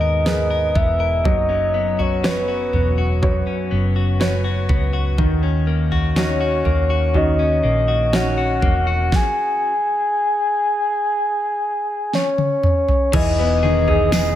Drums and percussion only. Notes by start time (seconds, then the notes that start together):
0.26 snare
0.75 kick, floor tom
1.25 kick, floor tom
2.00 floor tom
2.24 snare
2.73 floor tom
3.22 kick, floor tom
4.21 snare
4.69 kick, floor tom
5.18 kick, floor tom
5.92 floor tom
6.16 snare
6.65 floor tom
7.14 floor tom
8.13 snare
8.62 kick, floor tom
9.12 kick, snare
12.13 snare
12.38 high tom
12.63 mid tom
12.88 floor tom
13.13 kick, floor tom, crash
13.88 floor tom
14.12 snare, tambourine